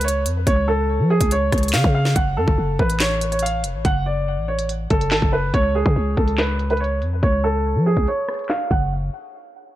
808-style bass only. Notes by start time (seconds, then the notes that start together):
Already playing: C#2
0.26 F2
0.47 C#2
1.00 F3
1.21 C#2
1.53 C#2
1.74 C#3
1.84 C#3
2.16 F#1
2.37 F#2
2.48 F#1
2.58 F#1
2.79 A1
3.64 F1
3.74 A1
3.85 F#1
4.38 A1
4.91 F#1
5.12 G#1
5.22 F#1
5.54 C#2
5.86 C#3
5.96 C#2
6.17 C#2
7.02 F2
7.23 C#2
7.76 F3
7.97 C#2
8.71 F#1